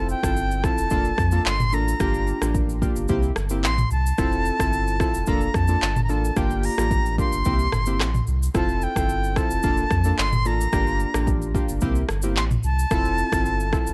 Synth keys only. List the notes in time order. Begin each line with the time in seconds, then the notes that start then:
Already playing: C4 E4 F4 A4
0.23 C4 E4 F4 A4
0.63 C4 E4 F4 A4
0.91 A#3 D4 F4 A4
1.32 A#3 D4 F4 A4
1.72 A#3 D4 F4 A4
2.00 A#3 D4 F4 G4
2.41 A#3 D4 F4 G4
2.82 A#3 D4 F4 G4
3.09 A#3 C4 E4 G4
3.50 A#3 C4 E4 G4
4.18 C4 E4 F4 A4
4.60 C4 E4 F4 A4
5.00 C4 E4 F4 A4
5.27 A#3 D4 F4 A4
5.69 A#3 D4 F4 A4
6.09 A#3 D4 F4 A4
6.36 A#3 D4 F4 G4
6.78 A#3 D4 F4 G4
7.18 A#3 D4 F4 G4
7.45 A#3 C4 E4 G4
7.87 A#3 C4 E4 G4
8.54 C4 E4 F4 A4
8.96 C4 E4 F4 A4
9.36 C4 E4 F4 A4
9.63 A#3 D4 F4 A4
10.05 A#3 D4 F4 A4
10.45 A#3 D4 F4 A4
10.72 A#3 D4 F4 G4
11.14 A#3 D4 F4 G4
11.54 A#3 D4 F4 G4
11.82 A#3 C4 E4 G4
12.23 A#3 C4 E4 G4
12.91 C4 E4 F4 A4
13.32 C4 E4 F4 A4
13.73 C4 E4 F4 A4